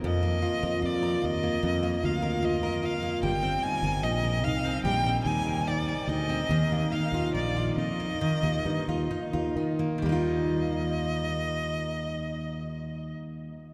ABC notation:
X:1
M:4/4
L:1/16
Q:1/4=72
K:Eb
V:1 name="Violin"
e4 d2 e4 f2 e2 f2 | g2 a2 e2 f2 g2 a2 d2 e2- | e2 f2 d2 e8 z2 | e16 |]
V:2 name="Steel-string acoustic guitar"
[F,,B,] B, F B F B F B, F,, B, F B F B F B, | G, C E B E B E C G, C E B E B E C | E, B, E F E F E B, E, B, E F E F E B, | [E,G,B,EF]16 |]
V:3 name="Fretless electric bass" clef=bass
F,,2 z F,, F,,2 E,,2 F,,2 D,,4 z2 | G,,,2 z G,,, B,,,2 C,,2 B,,,2 E,,4 D,,2 | E,,2 z E,, B,,,2 F,,2 z E,, G,, E,, z E,, E,2 | E,,16 |]